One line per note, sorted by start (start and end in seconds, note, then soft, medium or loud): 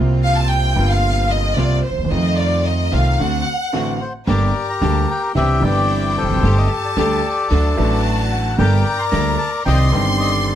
0.00 0.72 C2 medium
0.00 0.73 C2 medium
0.00 0.73 C3 medium
0.00 0.72 G3 medium
0.00 0.72 A#3 medium
0.00 0.73 A#3 medium
0.00 0.72 C4 medium
0.00 0.72 F4 medium
0.00 0.74 F4 medium
0.23 0.35 F5 medium
0.36 0.50 A5 medium
0.50 0.90 G5 medium
0.74 1.53 G1 medium
0.74 1.53 G2 medium
0.74 1.52 C3 medium
0.74 1.53 G3 medium
0.74 1.53 A#3 medium
0.74 1.53 C4 medium
0.74 1.53 F4 medium
0.78 1.54 F4 medium
0.89 1.30 F5 medium
1.30 1.57 D#5 medium
1.56 1.80 C2 medium
1.56 1.79 C3 medium
1.56 1.80 G3 medium
1.56 1.80 A#3 medium
1.56 1.80 C4 medium
1.56 1.80 F4 medium
1.56 1.83 D5 medium
1.83 2.09 C5 medium
1.90 1.97 D2 soft
1.90 1.98 D2 soft
1.98 2.04 D#2 medium
2.04 2.11 E2 medium
2.09 2.88 F2 medium
2.09 2.87 D#3 medium
2.09 2.88 F3 medium
2.09 2.87 A3 medium
2.09 2.88 A3 medium
2.09 2.88 C4 medium
2.09 2.88 D#4 medium
2.09 2.88 F4 medium
2.09 2.38 D#5 medium
2.13 2.89 F4 medium
2.38 2.65 D5 medium
2.65 2.92 D#5 medium
2.92 3.15 C2 medium
2.92 3.15 C3 medium
2.92 3.14 D#3 medium
2.92 3.14 A3 medium
2.92 3.15 A3 medium
2.92 3.15 C4 medium
2.92 3.15 D#4 medium
2.92 3.15 F4 medium
2.92 3.19 F5 medium
3.19 3.42 D2 medium
3.19 3.42 D3 medium
3.19 3.42 A3 medium
3.19 3.42 C4 medium
3.19 3.42 D4 medium
3.19 3.42 F#4 medium
3.19 4.00 F#5 medium
3.73 3.96 A1 medium
3.73 3.96 A2 medium
3.73 3.96 D3 medium
3.73 3.96 A3 medium
3.73 3.96 C4 medium
3.73 3.96 D4 medium
3.73 3.96 F#4 medium
4.01 4.13 C5 medium
4.27 4.50 G1 medium
4.27 4.50 G1 loud
4.27 4.50 G2 medium
4.27 4.50 D3 medium
4.27 4.50 G3 medium
4.27 4.50 A#3 medium
4.27 4.50 D4 medium
4.27 4.50 G4 medium
4.27 5.32 G4 medium
4.27 5.32 A#4 medium
4.27 4.70 D5 loud
4.27 5.31 A#5 medium
4.69 4.75 A#5 medium
4.81 5.04 D2 loud
4.81 5.04 D2 medium
4.81 5.04 D3 medium
4.81 5.04 G3 medium
4.81 5.04 A#3 medium
4.81 5.04 D4 medium
4.81 5.04 G4 medium
4.81 5.10 A5 loud
5.11 5.22 G5 medium
5.35 5.58 C2 medium
5.35 5.58 C3 medium
5.35 5.58 E3 medium
5.35 5.58 C4 medium
5.35 5.58 D4 medium
5.35 5.58 E4 medium
5.35 5.58 G4 medium
5.35 5.63 G4 medium
5.35 5.64 E5 loud
5.35 6.43 G5 medium
5.60 6.22 G1 medium
5.60 6.39 G1 medium
5.60 6.39 G2 medium
5.60 6.38 E3 medium
5.60 6.39 C4 medium
5.60 6.39 D4 medium
5.60 6.39 E4 medium
5.64 6.40 G4 medium
5.64 6.16 G4 medium
5.64 6.19 D5 loud
6.17 6.97 G4 medium
6.17 6.97 A4 medium
6.17 6.58 C5 medium
6.23 6.29 E1 medium
6.23 6.29 E2 medium
6.29 6.36 F1 medium
6.29 6.36 F2 medium
6.35 6.42 F#1 medium
6.35 6.43 F#2 medium
6.42 6.66 G1 loud
6.42 6.66 G1 medium
6.42 6.66 G2 medium
6.42 6.65 G3 medium
6.42 6.66 A3 medium
6.42 6.66 D4 medium
6.42 6.66 G4 loud
6.42 6.66 A4 medium
6.42 7.49 A5 loud
6.58 6.70 D#5 medium
6.85 6.91 D5 medium
6.97 7.19 D2 loud
6.97 7.20 D2 medium
6.97 7.20 D3 loud
6.97 7.19 G3 medium
6.97 7.19 A3 medium
6.97 7.20 A3 medium
6.97 7.19 D4 medium
6.97 7.20 D4 medium
6.97 7.20 G4 medium
6.97 7.48 G4 medium
6.97 7.20 A4 medium
6.97 8.02 A4 medium
6.97 8.01 D5 medium
7.50 7.73 D2 loud
7.50 7.74 D2 medium
7.50 7.73 D3 medium
7.50 7.73 F#3 medium
7.50 7.73 A3 medium
7.50 7.73 D4 medium
7.50 7.74 D4 medium
7.50 7.73 F#4 medium
7.50 7.74 A4 medium
7.50 8.54 A5 loud
7.75 8.54 A1 medium
7.75 8.55 A1 medium
7.75 8.54 A2 loud
7.75 8.53 F#3 medium
7.75 8.54 A3 medium
7.75 8.54 D4 medium
7.75 8.55 F#4 loud
7.79 8.55 A4 medium
8.32 8.57 F#5 medium
8.58 8.81 G1 medium
8.58 8.81 G1 loud
8.58 8.81 G2 medium
8.58 8.81 G3 medium
8.58 8.81 A3 medium
8.58 8.81 A#3 medium
8.58 8.81 D4 medium
8.58 8.81 G4 medium
8.58 8.81 A4 medium
8.58 9.63 A#4 medium
8.58 9.63 D5 medium
8.58 9.00 G5 loud
8.58 9.63 A#5 loud
8.99 9.05 C6 medium
9.11 9.35 D2 medium
9.11 9.35 D2 loud
9.11 9.35 D3 medium
9.11 9.35 G3 medium
9.11 9.35 A3 medium
9.11 9.35 A#3 medium
9.11 9.35 D4 medium
9.11 9.35 G4 medium
9.11 9.35 A4 medium
9.11 9.37 A#5 loud
9.39 9.51 A5 loud
9.65 9.89 C2 medium
9.65 9.89 C2 loud
9.65 9.89 C3 medium
9.65 9.89 D#3 medium
9.65 9.89 C4 medium
9.65 9.89 D4 medium
9.65 9.89 D#4 medium
9.65 9.89 G4 medium
9.65 10.46 D5 medium
9.65 9.91 D#5 medium
9.65 9.78 G5 loud
9.65 10.55 C6 loud
9.91 10.55 G1 medium
9.91 10.55 G2 medium
9.91 10.55 D3 medium
9.91 10.55 D#3 medium
9.91 10.55 C4 medium
9.91 10.55 G4 medium
9.91 10.05 D#5 medium
10.20 10.32 D#5 medium
10.48 10.54 D5 medium